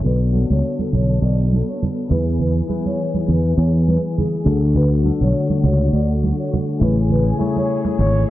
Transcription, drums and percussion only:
0.04 low conga
0.34 high conga
0.50 high conga
0.79 high conga
0.93 low conga
1.53 high conga
1.82 high conga, low conga
2.10 high conga, low conga
2.39 low conga
2.69 high conga
2.85 high conga
3.14 high conga
3.29 low conga
3.88 high conga
4.18 high conga, low conga
4.46 high conga, low conga
4.75 low conga
5.05 high conga
5.21 high conga
5.49 high conga
5.64 low conga
6.23 high conga
6.53 high conga, low conga
6.81 high conga, low conga
7.10 low conga
7.40 high conga
7.56 high conga
7.84 high conga
7.99 low conga

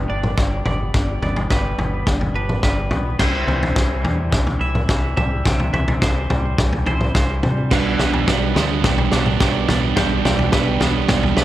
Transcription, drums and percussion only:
0.24 mid tom
0.38 kick, snare
0.66 floor tom, mid tom
0.94 kick, snare, floor tom
1.23 floor tom
1.36 floor tom
1.50 kick, snare
1.79 floor tom
2.07 kick, snare, floor tom
2.21 floor tom
2.49 mid tom
2.63 kick, snare
2.91 floor tom, mid tom
3.19 kick, snare, floor tom, crash
3.48 floor tom
3.63 floor tom
3.76 kick, snare
4.05 floor tom
4.32 kick, snare, floor tom
4.47 floor tom
4.75 mid tom
4.89 kick, snare
5.17 floor tom, mid tom
5.45 kick, snare, floor tom
5.60 floor tom
5.74 floor tom
5.88 floor tom
6.02 kick, snare
6.30 floor tom, mid tom
6.58 kick, snare, floor tom, mid tom
6.73 floor tom
6.86 floor tom
7.01 mid tom
7.15 kick, snare
7.43 floor tom, mid tom
7.71 kick, snare, floor tom, crash
7.99 snare, floor tom
8.14 floor tom
8.28 kick, snare
8.56 snare, floor tom
8.84 kick, snare, floor tom
8.98 floor tom
9.12 snare
9.26 mid tom
9.40 kick, snare
9.69 snare, floor tom, mid tom
9.97 kick, snare, floor tom
10.25 snare, floor tom
10.39 floor tom
10.52 kick, snare
10.81 snare, floor tom
11.09 kick, snare, floor tom
11.23 floor tom
11.37 snare

